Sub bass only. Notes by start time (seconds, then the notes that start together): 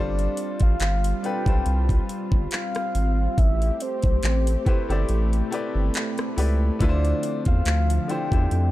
Already playing: G1
0.61 A1
0.80 G1
1.46 B1
1.66 C2
2.32 G1
2.95 G#1
3.38 A1
4.03 B1
4.23 A1
4.89 G1
5.09 A1
5.75 G1
6.37 C#2
6.80 D2
7.46 E2
7.66 D2
8.32 E2
8.51 F2